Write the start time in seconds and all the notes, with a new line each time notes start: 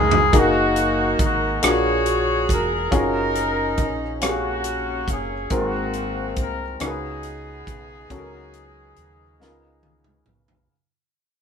Already playing: C#2 C#3 G#3 B3 C#4 D#4 G#4 A#4 F5
0.11 floor tom
0.33 F#1 A#3 D#4 F#4 G#4, kick, closed hi-hat
0.37 F#4
0.76 closed hi-hat
1.19 G#1, kick, closed hi-hat
1.23 F#4
1.62 A#1 A#2 A#3 D4 F#4 G#4, cross-stick, closed hi-hat
1.66 C#5
2.06 closed hi-hat
2.49 E1 A#4, kick, closed hi-hat
2.91 F#1 C#4 D#4 F4 F#4 G#4, kick, closed hi-hat
2.96 A#4
3.35 cross-stick, closed hi-hat
3.77 A#1, kick, closed hi-hat
4.21 A#3 C#4 F#4 G4 F5, cross-stick, closed hi-hat
4.26 F#4 G#4
4.64 closed hi-hat
5.08 F#1 G#4, kick, closed hi-hat
5.50 G#1 G#2 A#3 C4 F#4 G#4 A#4, kick, closed hi-hat
5.55 F#4
5.93 closed hi-hat
6.36 C2, kick, closed hi-hat
6.40 A#4
6.80 C#2 C#3 B3 C#4 D#4 F#4 A#4, cross-stick, closed hi-hat
6.84 G#4 B4
7.23 closed hi-hat
7.67 B1, kick, closed hi-hat
8.10 C#2 C#3 F#3 C#4 F#4 A4, kick, closed hi-hat
8.18 A#4
8.53 closed hi-hat
8.96 D#2, closed hi-hat
9.40 C#2 C#3 B3 D#4 F4 A#4, snare
9.83 high tom
10.04 mid tom
10.26 B1, mid tom
10.48 floor tom